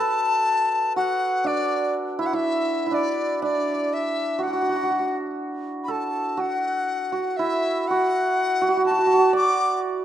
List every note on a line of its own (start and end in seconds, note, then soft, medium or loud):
0.00 0.96 F#4 medium
0.00 2.88 A4 medium
0.00 2.18 B4 medium
0.00 0.96 A5 loud
0.96 4.20 F#4 medium
0.96 1.48 F#5 medium
1.44 2.91 D4 medium
1.44 1.94 D5 medium
2.19 2.33 E4 medium
2.19 2.28 E5 medium
2.26 2.36 F#5 medium
2.33 2.86 E4 medium
2.33 2.96 E5 medium
2.86 6.34 E4 soft
2.91 3.42 D4 medium
2.91 3.43 D5 medium
3.42 7.15 D4 medium
3.42 3.95 D5 medium
3.93 4.45 E5 medium
4.39 4.47 F#4 medium
4.43 4.53 F#4 soft
4.43 5.17 F#5 medium
4.53 4.62 F#4 soft
4.62 4.69 F#4 soft
4.69 4.76 F#4 soft
4.76 4.83 F#4 soft
4.83 4.90 F#4 soft
4.91 4.99 F#4 soft
4.99 6.37 F#4 soft
5.84 5.93 B5 medium
5.88 8.81 A4 medium
5.88 6.42 A5 medium
6.37 7.12 F#4 medium
6.37 7.38 F#5 medium
7.12 7.90 F#4 medium
7.37 10.05 E4 medium
7.37 7.89 E5 medium
7.88 8.61 F#4 medium
7.88 8.85 F#5 medium
8.62 8.68 F#4 medium
8.69 8.77 F#4 medium
8.77 8.84 F#4 soft
8.85 8.90 F#4 soft
8.85 9.32 A5 medium
8.91 8.98 F#4 soft
8.99 9.06 F#4 soft
9.07 9.13 F#4 soft
9.13 9.18 F#4 soft
9.18 10.05 F#4 soft
9.33 10.05 D5 medium
9.33 9.80 D6 medium